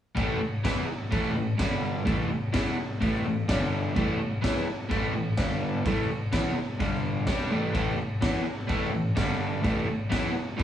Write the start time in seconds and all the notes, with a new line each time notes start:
0.15 A2 E3 A3, kick, crash
0.40 muted overdriven electric guitar stroke
0.64 E3 B3 E4, kick, snare, crash
0.88 muted overdriven electric guitar stroke
1.11 A2 E3 A3, kick, crash
1.35 A2 E3
1.58 G2 D3 G3, kick, snare, crash
2.05 A2 E3 A3, kick, crash
2.30 muted overdriven electric guitar stroke
2.53 E3 B3 E4, kick, snare, crash
2.78 muted overdriven electric guitar stroke
3.01 A2 E3 A3, kick, crash
3.26 A2 E3
3.48 G2 D3 G3, kick, snare, crash
3.95 A2 E3 A3, kick, crash
4.20 muted overdriven electric guitar stroke
4.42 E3 B3 E4, kick, snare, crash
4.67 muted overdriven electric guitar stroke
4.90 A2 E3 A3, kick, crash
5.15 A2 E3
5.37 G2 D3 G3, kick, snare, crash
5.85 A2 E3 A3, kick, crash
6.09 muted overdriven electric guitar stroke
6.32 E3 B3 E4, kick, snare, crash
6.55 muted overdriven electric guitar stroke
6.80 G2 D3 G3, kick, crash
7.27 G3 D4 G4, kick, snare, crash
7.50 A2 E3 A3
7.73 A2 E3 A3, kick, crash
7.98 muted overdriven electric guitar stroke
8.21 E3 B3 E4, kick, snare, crash
8.44 muted overdriven electric guitar stroke
8.67 A2 E3 A3, kick, crash
8.92 A2 E3
9.15 G2 D3 G3, kick, snare, crash
9.62 A2 E3 A3, kick, crash
9.87 muted overdriven electric guitar stroke
10.10 E3 B3 E4, kick, snare, crash
10.34 muted overdriven electric guitar stroke
10.57 A2 E3 A3, kick, crash